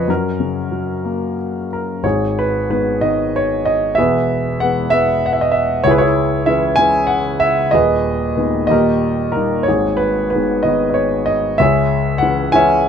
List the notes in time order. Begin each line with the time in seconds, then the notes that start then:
Already playing: F2 C#3 F3 B4 C#5 D#5
0.08 F#2 C#4 A#4
0.40 C#3
0.71 F#3
1.05 A#3
1.73 A#4
2.03 G#1 G#2 G#4 C#5
2.39 B4
2.70 D#3 G#3 B3 B4
3.01 D#3 G#3 B3 D#5
3.36 C#5
3.65 D#5
3.95 E1 E2 G#4 B4 E5
4.60 E3 G#3 B3 F#5
4.90 E3 G#3 B3 E5
5.26 F#5
5.33 E5
5.41 D#5
5.52 E5
5.84 C#2 E4 G#4 C#5
5.91 B4
5.98 E4 G#4 C#5
6.46 E3 G#3 C#4 E5
6.76 E3 G#3 C#4 G#5
7.07 F#5
7.40 E5
7.71 D#1 D#2 G#4 B4 D#5
8.37 D#3 G#3 B3
8.67 D#1 D#2 G4 D#5
8.71 A#4
9.32 D#3 A#4
9.36 G3 A#3
9.63 C#5
9.68 G#1 G#2 G#4
9.97 B4
10.30 B4
10.35 D#3 G#3 B3
10.63 D#3 G#3 B3 D#5
10.90 D#5
10.94 C#5
11.26 D#5
11.58 C#2 G#4 C#5 E5
12.18 E3 G#3 F#5
12.23 C#4
12.52 E3 G#3 C#4 C#5 E5 G#5